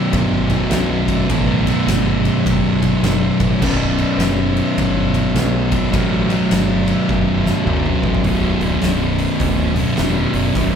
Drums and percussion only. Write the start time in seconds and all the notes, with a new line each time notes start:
0.13 kick, ride
0.50 kick, ride
0.71 snare, ride
1.08 kick, ride
1.30 kick, ride
1.67 ride
1.88 snare, ride
2.25 ride
2.46 kick, ride
2.82 kick, ride
3.04 snare, ride
3.40 kick, ride
3.62 kick, crash
3.98 ride
4.20 snare, ride
4.57 ride
4.78 kick, ride
5.14 kick, ride
5.36 snare, ride
5.72 kick, ride
5.93 kick, ride
6.30 ride
6.51 snare, ride
6.88 ride
7.09 kick, high tom
7.46 snare
7.67 mid tom
7.86 mid tom
8.03 kick
8.15 floor tom
8.24 kick, open hi-hat
8.61 open hi-hat
8.82 snare, open hi-hat
9.19 open hi-hat
9.40 kick, open hi-hat
9.76 open hi-hat
9.97 snare, open hi-hat
10.34 open hi-hat
10.55 kick, open hi-hat